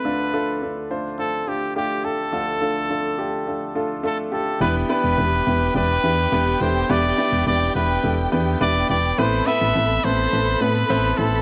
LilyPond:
<<
  \new Staff \with { instrumentName = "Violin section" } { \time 4/4 \key e \phrygian \tempo 4 = 105 r1 | r1 | <g' g''>1~ | <g' g''>1 |
<a' b''>1 | }
  \new Staff \with { instrumentName = "Trumpet" } { \time 4/4 \key e \phrygian b'4. r8 a'8 g'8 g'8 a'8~ | a'2. a'8 a'8 | b'8 b'4. b'4. c''8 | d''4 d''8 b'4 r8 d''8 d''8 |
c''8 e''4 c''4 b'4 a'8 | }
  \new Staff \with { instrumentName = "Grand piano" } { \time 4/4 \key e \phrygian <a d' f' a'>8 <a d' f' a'>8 <a d' f' a'>8 <a d' f' c''>8 <a d' f' c''>8 <a d' f' a'>8 <a d' f' g'>8 <a d' f' g'>8 | <a d' f' a'>8 <a d' f' a'>8 <a d' f' a'>8 <a d' f' g'>8 <a d' f' a'>8 <a d' f' a'>8 <a d' f' a'>8 <a d' f' g'>8 | <b d' e' g' b'>8 <b d' e' g' b'>8 <b d' e' g' b'>8 <b d' e' g' b'>8 <b d' e' g' d''>8 <b d' e' g' b'>8 <b d' e' g' b'>8 <b d' e' g' a'>8 | <b d' e' g' b'>8 <b d' e' g' d''>8 <b d' e' g' b'>8 <b d' e' g' b'>8 <b d' e' g' a'>8 <b d' e' g' b'>8 <b d' e' g' b'>8 <b d' e' g' b'>8 |
<b c' e' a' b'>8 <b c' e' a' b'>8 <b c' e' a' b'>8 <b c' e' a' b'>8 <b c' e' a' b'>8 <b c' e' a' b'>8 <b c' e' a' c''>8 <b c' e' a' b'>8 | }
  \new Staff \with { instrumentName = "Grand piano" } { \clef bass \time 4/4 \key e \phrygian <d, d>1 | <d, d>1 | e4. r2 r8 | e4. r2 r8 |
a,4. r2 r8 | }
  \new Staff \with { instrumentName = "FM bass" } { \clef bass \time 4/4 \key e \phrygian r1 | r1 | e,,8 r16 e,,16 e,,8 e,,8 e,,8 e,8 e,,8 e,,8 | e,,8 r16 e,,16 e,,8 e,,8 e,,8 e,8 e,,8 e,,8 |
a,,8 r16 a,,16 a,,8 a,,8 a,,8 a,8 a,,8 a,,8 | }
>>